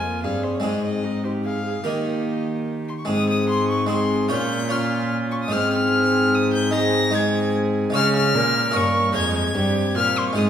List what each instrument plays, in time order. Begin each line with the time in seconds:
Already playing: harpsichord F2 F3 C4 G#4, cello F2, viola F4, violin G#5
0.04 trombone A#3
0.23 cello G2, harpsichord G2, trombone C4, viola G#4, violin F5
0.43 violin C5
0.54 violin C#5
0.60 cello G#2, harpsichord G#2 G#3 C4 G#4, viola G#4, violin D#5
0.64 trombone C4
0.83 violin D#5
1.04 viola D#4
1.24 viola G4, violin C5
1.45 viola G#4, violin F5
1.66 viola G#4
1.84 cello D#3, harpsichord D#3 A#3 A#4, trombone A#3, viola G4, violin D#5
2.89 violin C6
2.98 violin C#6
3.05 harpsichord G#2 G#3 C4 G#4, viola G#4, violin D#6
3.09 cello G#2, trombone C4
3.30 violin D#6
3.49 violin C6
3.69 violin C#6
3.87 harpsichord G#3 C4 G#4, trombone C4, violin C6
3.92 viola G#4
4.29 harpsichord A#2 F4 C#5, cello A#2, trombone C#4, viola F4, violin G6
4.69 trombone C#4, harpsichord F4 C#5, viola F4, violin F6
5.31 violin C#6
5.42 violin D#6
5.48 harpsichord G#3 F4 C5, violin F6
5.52 harpsichord G#2, cello G#2, trombone C4, viola G#4
5.73 violin F6
6.34 violin D#6
6.53 violin G6
6.71 harpsichord G#3 D#4 C5, trombone C4, violin A#6
6.75 viola G#4
7.11 harpsichord G#3 D#4 C5, violin G#6
7.16 trombone C4, viola G#4
7.90 harpsichord G#3 F4 C#5
7.95 harpsichord C#3, cello C#3, trombone C#4, viola G#4, violin F6
8.16 violin F6
8.35 harpsichord A#2, cello A#2, viola A#4
8.71 harpsichord G2 F4 G#4 C#5
8.76 cello G2, trombone A#3, violin C#6
9.12 harpsichord F2 F3 F4 C5, cello F2, trombone G#3, viola G#4, violin G#6
9.37 violin G#6
9.55 harpsichord G2, cello G2, trombone C4, viola G4
9.95 cello A#2, harpsichord A#2, viola F4, violin F6
10.18 violin C6
10.27 violin C#6
10.33 cello G#2, harpsichord G#3 D#4 C5, trombone C4, viola G#4
10.37 harpsichord G#2, violin D#6